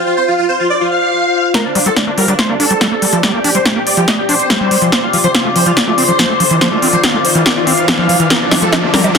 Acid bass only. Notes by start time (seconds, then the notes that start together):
1.75 G3
1.86 G3
2.07 A#3
2.18 G3
2.28 G3
2.49 A#3
2.60 D4
2.70 G3
2.81 G3
2.92 A#3
3.02 G3
3.13 F3
3.23 G3
3.34 A#3
3.44 D4
3.55 G3
3.65 D4
3.76 A#3
3.97 F3
4.08 G4
4.29 D4
4.50 G3
4.61 G3
4.71 G3
4.82 F3
5.13 F3
5.24 F3
5.45 A3
5.56 F3
5.66 F3
5.87 A3
5.98 C4
6.08 F3
6.19 F3
6.30 A3
6.40 F3
6.51 E3
6.61 F3
6.72 A3
6.82 C4
6.93 F3
7.03 C4
7.14 A3
7.35 E3
7.46 F4
7.67 C4
7.88 F3
7.99 F3
8.09 F3
8.20 E3
8.51 G3
8.62 G3
8.83 A#3
8.94 G3
9.04 G3